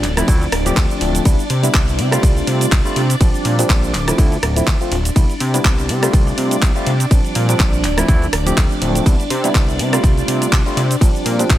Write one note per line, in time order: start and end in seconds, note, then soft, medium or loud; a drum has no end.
0.00 0.23 D1 medium
0.00 5.15 D4 medium
0.00 5.15 D5 medium
0.00 clap soft
0.00 open hi-hat medium
0.17 0.26 F3 medium
0.17 0.26 A3 medium
0.17 0.26 C4 medium
0.17 0.26 E4 loud
0.17 cross-stick medium
0.17 closed hi-hat medium
0.17 shaker medium
0.28 0.47 D2 loud
0.28 0.45 F3 loud
0.28 0.45 A3 medium
0.28 0.45 C4 medium
0.28 0.45 E4 loud
0.28 kick loud
0.28 closed hi-hat medium
0.28 ride medium
0.28 shaker medium
0.41 closed hi-hat soft
0.41 shaker soft
0.52 0.72 D1 medium
0.52 cross-stick medium
0.52 open hi-hat loud
0.65 0.98 F3 medium
0.65 0.98 A3 medium
0.65 0.99 C4 medium
0.65 0.99 G4 loud
0.65 closed hi-hat medium
0.65 shaker medium
0.77 0.87 D2 medium
0.77 kick loud
0.77 clap loud
0.77 closed hi-hat medium
0.77 ride medium
0.77 shaker medium
0.90 closed hi-hat soft
0.90 shaker soft
1.01 1.20 D1 loud
1.01 1.23 F3 medium
1.01 1.23 A3 medium
1.01 1.23 C4 medium
1.01 1.23 D4 medium
1.01 open hi-hat medium
1.15 closed hi-hat soft
1.15 shaker medium
1.25 1.36 C2 loud
1.25 1.42 G3 medium
1.25 1.42 B3 medium
1.25 1.42 D4 medium
1.25 1.42 E4 medium
1.25 kick loud
1.25 closed hi-hat medium
1.25 ride medium
1.25 shaker medium
1.39 closed hi-hat soft
1.39 shaker soft
1.50 1.69 C3 loud
1.50 open hi-hat loud
1.63 2.09 G3 medium
1.63 2.09 B3 medium
1.63 2.09 D4 medium
1.63 2.09 E4 medium
1.63 closed hi-hat medium
1.63 shaker medium
1.74 2.00 C2 medium
1.74 kick loud
1.74 clap loud
1.74 closed hi-hat medium
1.74 ride medium
1.74 shaker medium
1.88 closed hi-hat soft
1.88 shaker soft
1.99 2.18 C3 medium
1.99 open hi-hat medium
2.11 2.82 G3 medium
2.11 2.82 A3 medium
2.11 2.82 C4 medium
2.11 2.82 F4 loud
2.11 cross-stick medium
2.11 closed hi-hat medium
2.11 shaker medium
2.23 2.42 C2 medium
2.23 kick loud
2.23 closed hi-hat medium
2.23 ride medium
2.23 shaker medium
2.37 closed hi-hat soft
2.37 shaker soft
2.47 2.67 C3 medium
2.47 open hi-hat loud
2.61 closed hi-hat medium
2.61 shaker medium
2.72 2.82 C2 medium
2.72 kick loud
2.72 clap loud
2.72 closed hi-hat medium
2.72 ride medium
2.72 shaker medium
2.85 3.00 G3 medium
2.85 3.00 A3 medium
2.85 3.00 C4 medium
2.85 3.00 F4 loud
2.85 closed hi-hat soft
2.85 shaker soft
2.96 3.15 C3 loud
2.96 open hi-hat medium
3.10 closed hi-hat medium
3.10 shaker medium
3.20 3.31 A#1 loud
3.20 3.55 F3 medium
3.20 3.55 G3 medium
3.20 3.55 C4 medium
3.20 3.56 D4 medium
3.20 kick loud
3.20 closed hi-hat medium
3.20 ride medium
3.20 shaker medium
3.34 closed hi-hat soft
3.34 shaker soft
3.45 3.64 A#2 medium
3.45 open hi-hat loud
3.58 3.92 F3 medium
3.58 3.93 G3 medium
3.58 3.93 C4 medium
3.58 3.93 D4 medium
3.58 closed hi-hat medium
3.58 shaker medium
3.69 3.95 A#1 medium
3.69 kick loud
3.69 clap loud
3.69 closed hi-hat medium
3.69 ride medium
3.69 shaker medium
3.83 closed hi-hat soft
3.83 shaker soft
3.94 4.13 D1 medium
3.94 clap soft
3.94 open hi-hat medium
4.07 4.16 F3 medium
4.07 4.16 A3 medium
4.07 4.16 C4 medium
4.07 4.17 E4 medium
4.07 cross-stick medium
4.07 closed hi-hat medium
4.07 shaker medium
4.18 4.37 D2 medium
4.18 4.35 F3 medium
4.18 4.35 A3 medium
4.18 4.35 C4 medium
4.18 4.35 E4 loud
4.18 kick loud
4.18 closed hi-hat medium
4.18 ride medium
4.18 shaker medium
4.32 closed hi-hat soft
4.32 shaker soft
4.43 4.62 D1 medium
4.43 cross-stick medium
4.43 open hi-hat loud
4.56 4.77 F3 medium
4.56 4.77 A3 medium
4.56 4.77 C4 medium
4.56 4.78 E4 medium
4.56 closed hi-hat medium
4.56 shaker medium
4.67 4.77 D2 medium
4.67 kick loud
4.67 clap loud
4.67 closed hi-hat medium
4.67 ride medium
4.67 shaker medium
4.80 4.95 F3 medium
4.80 4.95 A3 medium
4.80 4.96 C4 medium
4.80 4.96 F4 medium
4.80 closed hi-hat soft
4.80 shaker soft
4.92 5.11 D1 loud
4.92 open hi-hat medium
5.05 closed hi-hat medium
5.05 shaker medium
5.16 5.26 C2 loud
5.16 5.33 G3 medium
5.16 5.33 B3 medium
5.16 11.58 D4 medium
5.16 5.33 D4 medium
5.16 5.33 E4 medium
5.16 11.58 D5 medium
5.16 kick loud
5.16 closed hi-hat medium
5.16 ride medium
5.16 shaker medium
5.30 closed hi-hat soft
5.30 shaker soft
5.40 5.60 C3 loud
5.40 open hi-hat loud
5.54 5.99 G3 medium
5.54 5.99 B3 medium
5.54 6.00 D4 medium
5.54 6.00 E4 medium
5.54 closed hi-hat medium
5.54 shaker medium
5.65 5.91 C2 medium
5.65 kick loud
5.65 clap loud
5.65 closed hi-hat medium
5.65 ride medium
5.65 shaker medium
5.79 closed hi-hat soft
5.79 shaker soft
5.89 6.08 C3 medium
5.89 open hi-hat medium
6.02 6.72 G3 medium
6.02 6.73 A3 medium
6.02 6.73 C4 medium
6.02 6.73 F4 loud
6.02 cross-stick medium
6.02 closed hi-hat medium
6.02 shaker medium
6.13 6.33 C2 medium
6.13 kick loud
6.13 closed hi-hat medium
6.13 ride medium
6.13 shaker medium
6.27 closed hi-hat soft
6.27 shaker soft
6.38 6.57 C3 medium
6.38 open hi-hat loud
6.51 closed hi-hat medium
6.51 shaker medium
6.62 6.72 C2 medium
6.62 kick loud
6.62 clap loud
6.62 closed hi-hat medium
6.62 ride medium
6.62 shaker medium
6.75 6.90 G3 loud
6.75 6.90 A3 medium
6.75 6.91 C4 medium
6.75 6.91 F4 loud
6.75 closed hi-hat soft
6.75 shaker soft
6.87 7.06 C3 loud
6.87 open hi-hat medium
7.00 closed hi-hat medium
7.00 shaker medium
7.11 7.21 A#1 loud
7.11 7.46 F3 medium
7.11 7.46 G3 medium
7.11 7.46 C4 medium
7.11 7.46 D4 medium
7.11 kick loud
7.11 closed hi-hat medium
7.11 ride medium
7.11 shaker medium
7.25 closed hi-hat soft
7.25 shaker soft
7.35 7.55 A#2 medium
7.35 open hi-hat loud
7.48 7.83 F3 medium
7.48 7.83 G3 medium
7.48 7.83 C4 medium
7.48 7.83 D4 medium
7.48 closed hi-hat medium
7.48 shaker medium
7.60 7.86 A#1 medium
7.60 kick loud
7.60 clap loud
7.60 closed hi-hat medium
7.60 ride medium
7.60 shaker medium
7.73 closed hi-hat soft
7.73 shaker soft
7.84 8.03 D1 medium
7.84 clap soft
7.84 open hi-hat loud
7.97 8.06 F3 medium
7.97 8.06 A3 medium
7.97 8.07 C4 medium
7.97 8.07 E4 loud
7.97 cross-stick medium
7.97 closed hi-hat medium
7.97 shaker medium
8.08 8.28 D2 loud
8.08 8.25 F3 loud
8.08 8.25 A3 medium
8.08 8.25 C4 medium
8.08 8.25 E4 loud
8.08 kick loud
8.08 closed hi-hat medium
8.08 ride medium
8.08 shaker medium
8.22 closed hi-hat soft
8.22 shaker soft
8.33 8.52 D1 medium
8.33 cross-stick medium
8.33 open hi-hat loud
8.46 8.79 F3 medium
8.46 8.79 A3 medium
8.46 8.79 C4 medium
8.46 8.79 G4 loud
8.46 closed hi-hat medium
8.46 shaker medium
8.57 8.68 D2 medium
8.57 kick loud
8.57 clap loud
8.57 closed hi-hat medium
8.57 ride medium
8.57 shaker medium
8.71 closed hi-hat soft
8.71 shaker soft
8.81 9.01 D1 loud
8.81 9.03 F3 medium
8.81 9.03 A3 medium
8.81 9.04 C4 medium
8.81 9.04 D4 medium
8.81 open hi-hat loud
8.95 closed hi-hat medium
8.95 shaker medium
9.06 9.16 C2 loud
9.06 9.23 G3 medium
9.06 9.23 B3 medium
9.06 9.23 D4 medium
9.06 9.23 E4 medium
9.06 kick loud
9.06 closed hi-hat medium
9.06 ride medium
9.06 shaker medium
9.20 closed hi-hat soft
9.20 shaker soft
9.30 9.50 C3 medium
9.30 open hi-hat loud
9.44 9.89 G3 medium
9.44 9.90 B3 medium
9.44 9.90 D4 medium
9.44 9.90 E4 medium
9.44 closed hi-hat medium
9.44 shaker medium
9.55 9.81 C2 medium
9.55 kick loud
9.55 clap loud
9.55 closed hi-hat medium
9.55 ride medium
9.55 shaker medium
9.69 closed hi-hat soft
9.69 shaker soft
9.79 9.98 C3 medium
9.79 open hi-hat loud
9.92 10.62 G3 medium
9.92 10.63 A3 medium
9.92 10.63 C4 medium
9.92 10.63 F4 loud
9.92 cross-stick medium
9.92 closed hi-hat medium
9.92 shaker medium
10.04 10.23 C2 loud
10.04 kick loud
10.04 closed hi-hat medium
10.04 ride medium
10.04 shaker medium
10.17 closed hi-hat soft
10.17 shaker soft
10.28 10.47 C3 medium
10.28 open hi-hat loud
10.42 closed hi-hat medium
10.42 shaker medium
10.52 10.63 C2 medium
10.52 kick loud
10.52 clap loud
10.52 closed hi-hat medium
10.52 ride medium
10.52 shaker medium
10.66 10.81 G3 medium
10.66 10.81 A3 medium
10.66 10.81 C4 medium
10.66 10.81 F4 loud
10.66 closed hi-hat soft
10.66 shaker soft
10.77 10.96 C3 loud
10.77 open hi-hat loud
10.91 closed hi-hat medium
10.91 shaker medium
11.01 11.11 A#1 loud
11.01 11.36 F3 medium
11.01 11.36 G3 medium
11.01 11.36 C4 medium
11.01 11.36 D4 loud
11.01 kick loud
11.01 closed hi-hat medium
11.01 ride medium
11.01 shaker medium
11.15 closed hi-hat soft
11.15 shaker soft
11.25 11.45 A#2 loud
11.25 open hi-hat loud
11.39 11.58 F3 medium
11.39 11.58 G3 medium
11.39 11.58 C4 medium
11.39 11.58 D4 medium
11.39 closed hi-hat medium
11.39 shaker medium
11.50 11.58 A#1 medium
11.50 kick loud
11.50 clap loud
11.50 closed hi-hat medium
11.50 ride medium
11.50 shaker medium